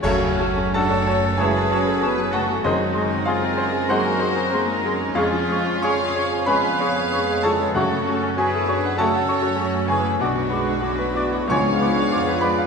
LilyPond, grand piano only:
\new Staff \with { instrumentName = "Grand piano" } { \time 4/4 \key fis \minor \tempo 4 = 96 << { <cis' a' cis''>4 <fis'' a''>4 <gis' gis''>4. <fis' fis''>8 | <dis' bis' dis''>4 <eis' eis''>4 <fis' dis'' fis''>4. r8 | <eis' cis'' eis''>4 <cis'' gis'' cis'''>4 <b' gis'' b''>4. <a' a''>8 | <fis' cis'' fis''>4 <gis' gis''>4 <a' fis'' a''>4. <gis' gis''>8 |
<fis' d'' fis''>2 <cis'' gis'' cis'''>4. <b' b''>8 | } \\ { fis,16 cis16 fis16 cis'16 a'16 fis'16 cis''16 a''16 cis''16 a''16 cis''16 a'16 cis'16 fis16 cis16 fis16 | fis,16 fis16 gis16 bis16 gis'16 bis16 bis'16 gis''16 bis'16 gis''16 bis'16 gis'16 bis16 gis16 fis16 gis16 | eis,16 eis16 gis16 cis'16 gis'16 cis'16 cis''16 gis''16 cis''16 gis''16 cis''16 gis'16 cis'16 gis16 eis16 gis16 | fis,16 cis16 a16 cis'16 fis'16 a'16 cis''16 fis''16 cis''16 fis''16 cis''16 fis'16 cis'16 a16 cis16 a16 |
b,,16 fis,16 b16 d'16 fis'16 b'16 d''16 fis''16 cis,16 gis,16 b16 d'16 eis'16 b'16 d''16 eis''16 | } >> }